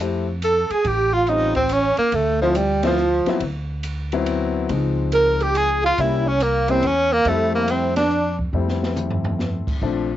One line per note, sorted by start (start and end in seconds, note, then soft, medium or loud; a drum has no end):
0.00 0.66 F2 medium
0.00 0.25 A3 soft
0.00 0.25 C4 soft
0.00 0.25 E4 soft
0.00 0.26 G4 medium
0.42 0.73 A4 medium
0.42 hi-hat pedal medium
0.42 ride medium
0.70 0.88 G#4 medium
0.70 0.89 G#4 medium
0.70 muted upright bass stroke soft
0.70 ride soft
0.85 1.94 A1 medium
0.85 1.15 G4 medium
0.85 kick soft
0.85 ride soft
1.14 1.31 F4 medium
1.14 1.32 F4 medium
1.27 1.54 G3 soft
1.27 1.54 C4 soft
1.27 1.54 C#4 soft
1.27 1.56 D#4 medium
1.27 1.57 D#4 medium
1.27 1.54 F4 medium
1.27 hi-hat pedal medium
1.27 ride medium
1.55 1.74 C4 medium
1.55 1.73 C4 medium
1.55 kick soft
1.55 ride soft
1.69 1.98 C#4 medium
1.69 hi-hat pedal medium
1.69 ride medium
1.97 2.16 A#3 medium
1.97 2.15 A#3 medium
1.97 muted upright bass stroke soft
1.97 ride soft
2.12 3.22 D2 medium
2.12 2.42 A3 medium
2.12 2.41 A3 medium
2.12 kick soft
2.12 ride medium
2.41 2.59 F3 medium
2.41 2.55 F3 medium
2.41 2.57 F3 medium
2.41 2.55 A3 medium
2.41 2.55 C4 medium
2.41 2.55 E4 medium
2.55 2.84 G3 medium
2.55 2.85 G3 medium
2.55 hi-hat pedal medium
2.55 ride medium
2.83 2.97 F3 medium
2.83 3.38 F3 medium
2.83 3.39 F3 medium
2.83 2.97 A3 medium
2.83 2.98 C4 medium
2.83 2.98 E4 medium
2.83 snare medium
2.83 ride medium
2.98 hi-hat pedal medium
3.26 3.40 F#3 medium
3.26 3.40 B3 medium
3.26 3.40 C4 medium
3.26 3.41 E4 medium
3.26 muted upright bass stroke soft
3.26 snare soft
3.26 ride soft
3.40 4.65 D2 medium
3.40 kick soft
3.40 ride medium
3.83 hi-hat pedal medium
3.83 ride medium
4.12 4.67 F#3 medium
4.12 4.67 B3 medium
4.12 4.67 C4 medium
4.12 4.68 E4 medium
4.12 ride soft
4.26 ride medium
4.69 5.94 C#2 medium
4.69 5.89 F3 soft
4.69 5.89 G#3 soft
4.69 5.89 C4 soft
4.69 5.90 D#4 medium
4.69 kick soft
4.69 ride soft
5.12 5.43 A#4 medium
5.12 5.45 A#4 medium
5.12 hi-hat pedal medium
5.12 ride medium
5.40 5.57 G4 medium
5.40 5.59 G4 medium
5.40 ride soft
5.55 5.83 G#4 medium
5.55 5.84 G#4 medium
5.55 hi-hat pedal soft
5.55 ride medium
5.84 6.01 F4 medium
5.84 6.03 F4 loud
5.98 6.79 C2 medium
5.98 6.24 G3 medium
5.98 6.24 A#3 soft
5.98 6.24 C#4 soft
5.98 6.24 E4 medium
5.98 6.28 E4 medium
5.98 6.30 E4 medium
5.98 kick soft
5.98 ride medium
6.26 6.45 C#4 medium
6.26 6.44 C#4 medium
6.40 6.72 A#3 medium
6.40 6.71 A#3 medium
6.40 hi-hat pedal medium
6.40 ride medium
6.68 6.82 G3 medium
6.68 6.82 A#3 medium
6.68 6.87 C4 medium
6.68 6.88 C4 medium
6.68 6.82 C#4 medium
6.68 6.82 E4 medium
6.68 ride soft
6.82 7.22 E2 medium
6.82 7.15 C#4 medium
6.82 ride medium
6.87 7.14 C#4 medium
7.13 7.29 A#3 medium
7.13 7.31 A#3 medium
7.25 8.50 F2 medium
7.25 7.91 G3 medium
7.25 7.92 A3 medium
7.25 7.54 A3 medium
7.25 7.91 C4 medium
7.25 7.92 E4 medium
7.25 kick soft
7.25 ride medium
7.30 7.55 A3 medium
7.55 7.72 A#3 medium
7.55 7.74 A#3 medium
7.68 7.96 C4 medium
7.68 hi-hat pedal soft
7.68 ride medium
7.72 7.98 C4 medium
7.96 8.36 D4 medium
7.96 8.37 D4 medium
7.96 snare medium
7.96 ride medium
8.11 hi-hat pedal medium
8.39 kick soft
8.53 9.63 F2 medium
8.53 9.73 G3 medium
8.53 9.74 A3 soft
8.53 9.74 C4 soft
8.53 9.74 E4 medium
8.68 snare soft
8.83 snare medium
8.96 hi-hat pedal medium
8.96 mid tom medium
9.10 floor tom medium
9.24 floor tom medium
9.39 snare medium
9.67 muted upright bass stroke soft
9.67 kick medium
9.67 crash medium
9.82 10.17 A#1 medium
9.82 10.08 F3 medium
9.82 10.08 A3 soft
9.82 10.08 C4 soft
9.82 10.08 D4 medium
9.82 kick soft